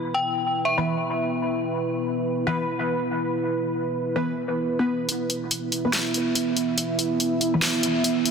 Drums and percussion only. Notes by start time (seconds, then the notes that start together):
5.09 closed hi-hat
5.30 closed hi-hat
5.51 closed hi-hat
5.72 closed hi-hat
5.93 snare, closed hi-hat
6.14 closed hi-hat
6.35 closed hi-hat
6.57 closed hi-hat
6.78 closed hi-hat
6.99 closed hi-hat
7.20 closed hi-hat
7.41 closed hi-hat
7.62 snare, closed hi-hat
7.83 closed hi-hat
8.04 closed hi-hat
8.26 closed hi-hat